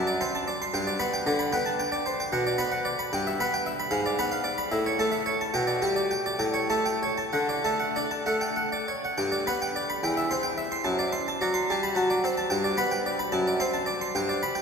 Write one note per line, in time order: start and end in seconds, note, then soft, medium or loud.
0.00 0.20 F#2 medium
0.07 0.22 D5 soft
0.21 0.49 C4 soft
0.21 0.35 C6 medium
0.35 0.49 A5 soft
0.48 0.62 D5 soft
0.62 0.75 C6 soft
0.74 1.00 G2 medium
0.74 0.88 G5 medium
0.87 1.01 D5 medium
0.99 1.28 B3 soft
0.99 1.14 B5 medium
1.13 1.28 G5 soft
1.27 1.55 D3 soft
1.27 1.41 D5 medium
1.39 1.54 B5 medium
1.53 1.81 B3 soft
1.53 1.67 G5 medium
1.66 1.80 A5 soft
1.79 1.94 G5 medium
1.92 2.07 D5 medium
2.06 2.20 C5 soft
2.20 2.33 G5 soft
2.32 2.58 B2 medium
2.32 2.47 F#5 medium
2.47 2.60 D5 soft
2.58 2.87 B3 soft
2.58 2.72 B5 medium
2.72 2.86 F#5 soft
2.85 2.99 D5 medium
2.99 3.12 B5 medium
3.13 3.38 G2 medium
3.13 3.27 G5 medium
3.27 3.40 E5 medium
3.40 3.67 B3 medium
3.40 3.53 B5 medium
3.54 3.67 G5 soft
3.66 3.80 E5 soft
3.80 3.92 B5 soft
3.91 4.17 G#2 medium
3.91 4.05 F5 medium
4.06 4.19 D5 soft
4.19 4.47 B3 soft
4.19 4.32 B5 medium
4.32 4.46 F5 soft
4.44 4.58 D5 soft
4.58 4.72 B5 medium
4.71 4.98 A2 medium
4.71 4.86 E5 soft
4.86 5.00 C#5 soft
4.99 5.27 A3 soft
4.99 5.13 A5 medium
5.12 5.26 E5 soft
5.26 5.40 C#5 soft
5.41 5.54 A5 soft
5.54 5.81 B2 medium
5.54 5.68 G5 medium
5.67 5.82 D5 soft
5.82 6.12 G3 soft
5.82 5.96 G5 soft
5.96 6.11 D5 soft
6.11 6.25 G5 soft
6.26 6.40 D5 soft
6.39 6.68 A2 soft
6.39 6.54 G5 soft
6.54 6.69 C#5 soft
6.70 7.02 A3 soft
6.70 6.85 A5 medium
6.86 7.01 G5 soft
7.03 7.18 C#5 soft
7.18 7.32 A5 soft
7.33 7.63 D3 soft
7.33 7.48 F#5 soft
7.49 7.64 D5 soft
7.64 7.96 A3 soft
7.64 7.80 A5 medium
7.80 7.95 F#5 soft
7.96 8.28 D4 soft
7.96 8.11 D5 soft
8.11 8.27 A5 soft
8.26 8.58 A3 soft
8.26 8.42 F#5 soft
8.41 8.57 G5 soft
8.56 8.73 F#5 soft
8.72 8.89 D5 soft
8.88 9.03 C#5 soft
9.05 9.19 F#5 soft
9.18 9.46 G2 medium
9.18 9.33 G5 medium
9.32 9.47 D5 medium
9.47 9.77 B3 soft
9.47 9.62 B5 medium
9.62 9.76 G5 soft
9.76 9.90 D5 soft
9.90 10.03 B5 medium
10.03 10.30 E2 medium
10.03 10.18 G5 soft
10.17 10.31 E5 medium
10.31 10.59 C4 soft
10.31 10.45 C6 medium
10.43 10.58 G5 soft
10.58 10.72 E5 soft
10.72 10.85 C6 soft
10.84 11.11 F#2 medium
10.84 10.99 A5 medium
10.99 11.13 D5 soft
11.13 11.27 C6 medium
11.28 11.42 A5 soft
11.41 11.70 F#3 soft
11.41 11.55 D5 medium
11.54 11.69 C6 soft
11.70 11.97 G3 soft
11.70 11.84 A5 soft
11.83 11.96 B5 soft
11.95 12.24 F#3 soft
11.95 12.10 A5 medium
12.10 12.24 D5 soft
12.24 12.51 C4 soft
12.24 12.37 C5 soft
12.37 12.51 A5 soft
12.50 12.77 G2 medium
12.50 12.64 G5 medium
12.64 12.78 D5 soft
12.77 13.06 B3 soft
12.77 12.92 B5 medium
12.91 13.06 G5 soft
13.06 13.20 D5 medium
13.19 13.33 B5 soft
13.32 13.59 F#2 medium
13.32 13.47 A5 medium
13.47 13.61 D5 soft
13.60 13.88 C4 soft
13.60 13.74 C6 medium
13.74 13.88 A5 medium
13.86 14.01 D5 soft
14.01 14.15 C6 medium
14.15 14.41 G2 medium
14.15 14.29 G5 medium
14.29 14.43 D5 medium
14.43 14.56 B5 medium
14.55 14.62 G5 medium